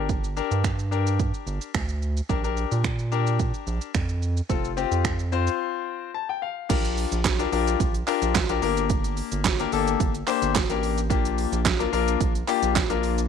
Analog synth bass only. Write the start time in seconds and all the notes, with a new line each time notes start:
Already playing: G1
0.51 G2
1.47 G1
1.75 D2
2.30 A#1
2.72 A#2
3.67 A#1
3.95 F2
4.50 F1
4.92 F2
6.70 A#1
7.12 A#1
7.52 A#1
7.80 A#1
8.22 A#1
8.50 A#1
8.62 G1
9.32 G1
9.73 G1
10.00 G1
10.42 G1
10.70 A1
11.10 A#1
11.52 A#1
11.93 A#1
12.21 A#1
12.63 A#1
12.90 A#1